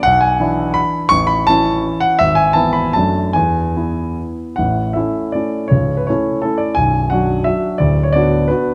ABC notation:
X:1
M:3/4
L:1/16
Q:1/4=166
K:A
V:1 name="Grand piano"
f2 g6 b4 | c'2 b2 a6 f2 | e2 g2 a2 b2 a4 | g8 z4 |
f4 e4 d4 | c3 B c4 A2 d2 | g4 f4 e4 | d3 c d4 B4 |]
V:2 name="Grand piano"
B,,,4 [E,DE]8 | A,,,4 [E,CE]8 | G,,,4 [E,B,E]4 [F,,F,A,D]4 | E,,4 [B,E]8 |
[A,,,A,,]4 [A,CE]4 [A,CE]4 | [C,,,C,,]4 [A,CE]4 [A,CE]4 | [B,,,,B,,,]4 [F,DF]4 [F,DF]4 | [D,,,D,,]4 [B,DF]4 [B,DF]4 |]